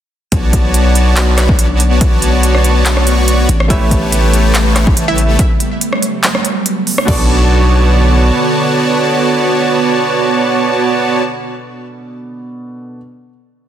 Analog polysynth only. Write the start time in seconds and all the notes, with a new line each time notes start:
0.32 B3 F#4 C#5 D5 A5
1.38 B3 F#4 C#5 D5 B5
1.59 B3 F#4 C#5 D5 A5
3.07 B3 F#4 C#5 D5 C#6
3.70 A3 G4 B4 C#5 A5
4.76 A3 G4 B4 C#5 B5
4.97 A3 G4 B4 C#5 A5
7.08 B3 F#4 C#5 D5 A5